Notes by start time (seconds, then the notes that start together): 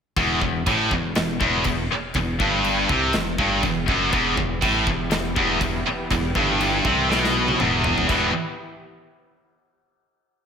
0.16 E1 E2, kick, crash
0.41 E1 E2, kick
0.67 A1 A2, kick, crash
0.90 E1 E2, kick
1.15 E1 E2, snare, crash
1.40 E1 E2, kick
1.64 E1 E2, kick, crash
1.91 E1, muted distorted electric guitar stroke
2.14 E1 E2, kick, crash
2.39 G1 G2, kick
2.64 crash
2.89 C2 C3, kick
3.13 E1 E2, snare, crash
3.38 G1 G2, kick
3.62 E1 E2, kick, crash
3.86 F#1 F#2, kick
4.11 E1 E2 E3 B3 E4 G4, kick, crash
4.37 E1 E2, kick
4.62 A1 A2, kick, crash
4.87 E1 E2, kick
5.10 E1 E2, snare, crash
5.36 E1 E2, kick
5.60 E1 E2, kick, crash
5.87 E1, muted distorted electric guitar stroke
6.11 E1 E2, kick, crash
6.35 G1 G2, kick
6.61 crash
6.85 C2 C3, kick
7.09 B1 B2, snare
7.24 snare
7.48 high tom
7.60 E1 E2, mid tom
7.84 floor tom
7.98 floor tom
8.08 E1 E2 B2 E3 B3 E4 G4, kick, crash